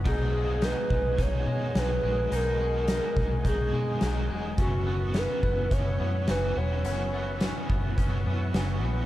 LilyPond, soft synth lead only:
\new Staff \with { instrumentName = "Soft synth lead" } { \time 4/4 \key b \major \tempo 4 = 106 gis'4 b'4 cis''4 b'4 | ais'2 gis'4. r8 | fis'4 b'4 cis''4 b'8 cis''8~ | cis''4. r2 r8 | }